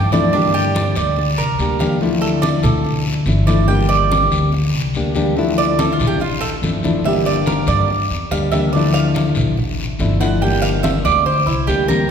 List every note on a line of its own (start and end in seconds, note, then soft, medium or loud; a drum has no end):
0.00 0.90 G2 medium
0.00 0.12 F3 medium
0.00 0.12 A3 medium
0.00 0.12 D4 medium
0.00 0.11 E4 medium
0.00 0.11 D5 medium
0.00 0.10 G5 loud
0.12 0.33 F3 medium
0.12 0.33 A3 medium
0.12 0.33 D4 medium
0.12 0.33 E4 medium
0.12 0.33 D5 medium
0.12 1.56 D5 medium
0.12 high conga medium
0.12 short guiro medium
0.32 1.16 D3 medium
0.32 1.17 G3 medium
0.32 1.17 A#3 medium
0.32 0.53 D4 medium
0.32 1.17 D4 medium
0.32 1.18 G4 medium
0.32 high conga soft
0.32 long guiro medium
0.54 0.95 G4 medium
0.54 high conga soft
0.75 high conga loud
0.75 short guiro medium
0.95 1.35 D2 medium
0.95 1.37 D5 medium
0.95 high conga soft
0.95 short guiro medium
1.16 muted nylon-string guitar stroke medium
1.16 high conga soft
1.16 long guiro medium
1.38 1.58 C2 medium
1.38 1.79 A#4 medium
1.38 high conga soft
1.58 2.58 D2 medium
1.58 1.80 G3 soft
1.58 1.80 A#3 medium
1.58 1.80 D4 medium
1.58 1.79 G4 medium
1.58 high conga soft
1.58 short guiro medium
1.79 2.01 G3 medium
1.79 2.01 A#3 medium
1.79 2.01 D4 medium
1.79 2.00 G4 medium
1.79 2.01 F5 medium
1.79 high conga loud
1.79 short guiro medium
2.01 2.84 D3 medium
2.01 2.84 F3 medium
2.01 2.85 A3 medium
2.01 2.85 D4 medium
2.01 2.85 E4 medium
2.01 high conga soft
2.01 long guiro medium
2.21 2.42 A4 medium
2.21 high conga soft
2.42 2.63 D5 loud
2.42 high conga medium
2.42 short guiro medium
2.63 3.22 D2 medium
2.63 3.03 A4 medium
2.63 high conga soft
2.63 low conga medium
2.63 short guiro medium
2.84 muted nylon-string guitar stroke medium
2.84 high conga soft
2.84 long guiro medium
3.07 high conga soft
3.26 4.25 G1 loud
3.26 3.47 F3 soft
3.26 3.48 A3 medium
3.26 3.47 D4 medium
3.26 3.46 E4 medium
3.26 high conga medium
3.26 short guiro medium
3.47 3.68 F3 medium
3.47 3.68 A3 medium
3.47 3.69 D4 medium
3.47 3.68 E4 medium
3.47 3.67 D5 loud
3.47 high conga medium
3.47 short guiro medium
3.68 4.52 D3 medium
3.68 4.52 G3 medium
3.68 4.52 A#3 medium
3.68 4.53 D4 medium
3.68 4.53 G4 medium
3.68 3.89 G5 loud
3.68 high conga soft
3.68 long guiro medium
3.89 4.29 D5 loud
3.89 high conga soft
4.11 high conga loud
4.11 short guiro medium
4.31 4.71 D2 medium
4.31 high conga soft
4.31 short guiro medium
4.52 muted nylon-string guitar stroke medium
4.52 high conga soft
4.52 long guiro medium
4.73 4.93 C2 medium
4.73 high conga soft
4.94 5.94 D2 medium
4.94 5.16 G3 soft
4.94 5.16 A#3 medium
4.94 5.15 D4 medium
4.94 5.14 G4 medium
4.94 high conga soft
4.94 short guiro medium
5.15 5.36 G3 medium
5.15 5.37 A#3 medium
5.15 5.37 D4 medium
5.15 5.36 G4 medium
5.15 high conga medium
5.15 short guiro medium
5.36 6.20 D3 medium
5.36 6.20 F3 medium
5.36 6.20 A3 medium
5.36 6.21 D4 medium
5.36 6.21 E4 medium
5.36 high conga soft
5.36 long guiro medium
5.58 5.78 D5 loud
5.58 high conga soft
5.79 5.93 A4 medium
5.79 high conga loud
5.79 short guiro medium
5.93 6.06 F4 medium
5.99 6.59 A1 medium
5.99 high conga soft
5.99 low conga medium
5.99 short guiro medium
6.07 6.21 G4 medium
6.20 6.42 F4 medium
6.20 muted nylon-string guitar stroke medium
6.20 high conga soft
6.20 long guiro medium
6.41 6.54 A4 loud
6.41 high conga soft
6.62 7.62 G1 medium
6.62 6.84 F3 medium
6.62 6.84 A3 medium
6.62 6.84 D4 medium
6.62 6.83 E4 medium
6.62 high conga medium
6.62 short guiro medium
6.83 7.05 F3 medium
6.83 7.05 A3 medium
6.83 7.05 D4 medium
6.83 7.04 E4 medium
6.83 high conga loud
6.83 short guiro medium
7.04 7.89 D3 medium
7.04 7.89 G3 medium
7.04 7.89 A#3 medium
7.04 7.91 D4 medium
7.04 7.90 G4 medium
7.04 7.26 E5 medium
7.04 high conga soft
7.04 long guiro medium
7.26 7.47 D5 loud
7.26 high conga soft
7.46 7.67 A#4 medium
7.46 high conga loud
7.46 short guiro medium
7.66 8.07 G2 loud
7.66 7.88 D5 medium
7.66 high conga soft
7.66 short guiro medium
7.88 muted nylon-string guitar stroke medium
7.88 high conga soft
7.88 long guiro medium
8.10 8.30 E2 medium
8.10 high conga soft
8.31 9.30 D2 medium
8.31 8.52 G3 medium
8.31 8.52 A#3 medium
8.31 8.52 D4 medium
8.31 8.52 G4 medium
8.31 8.51 F5 loud
8.31 high conga soft
8.31 short guiro medium
8.52 8.74 G3 medium
8.52 8.74 A#3 medium
8.52 8.73 D4 medium
8.52 8.73 G4 medium
8.52 8.72 E5 medium
8.52 high conga medium
8.52 short guiro medium
8.73 9.57 D3 medium
8.73 9.57 F3 medium
8.73 9.58 A3 medium
8.73 9.58 D4 medium
8.73 8.93 D5 medium
8.73 high conga soft
8.73 long guiro medium
8.77 9.58 E4 medium
8.94 9.07 F5 loud
8.94 high conga soft
9.14 high conga loud
9.14 short guiro medium
9.35 9.95 A1 medium
9.35 high conga soft
9.35 low conga medium
9.35 short guiro medium
9.57 muted nylon-string guitar stroke medium
9.57 high conga soft
9.57 low conga medium
9.57 long guiro medium
9.79 high conga soft
9.99 10.99 G1 medium
9.99 10.20 F3 medium
9.99 10.20 A3 medium
9.99 10.20 D4 medium
9.99 10.19 E4 medium
9.99 high conga medium
9.99 short guiro medium
10.20 10.41 F3 medium
10.20 10.41 A3 medium
10.20 10.41 D4 medium
10.20 10.41 E4 medium
10.20 10.41 F#5 loud
10.20 high conga medium
10.20 short guiro medium
10.41 11.25 D3 medium
10.41 11.25 G3 medium
10.41 11.25 A#3 medium
10.41 11.26 D4 medium
10.41 11.26 G4 medium
10.41 10.62 G5 medium
10.41 high conga soft
10.41 long guiro medium
10.62 10.83 F5 loud
10.62 high conga soft
10.83 11.04 E5 medium
10.83 high conga loud
10.83 short guiro medium
11.04 11.44 D2 loud
11.04 11.25 D5 loud
11.04 high conga soft
11.04 short guiro medium
11.26 11.46 C5 medium
11.26 muted nylon-string guitar stroke medium
11.26 high conga soft
11.26 long guiro medium
11.46 11.66 C2 medium
11.46 11.67 E4 medium
11.46 high conga soft
11.67 12.11 D2 medium
11.67 11.88 G3 medium
11.67 11.88 A#3 medium
11.67 11.88 D4 medium
11.67 11.88 G4 medium
11.67 11.87 G4 medium
11.67 high conga soft
11.67 short guiro medium
11.88 12.10 G3 medium
11.88 12.10 A#3 medium
11.88 12.09 D4 medium
11.88 12.09 G4 medium
11.88 12.09 A#4 loud
11.88 high conga loud
11.88 short guiro medium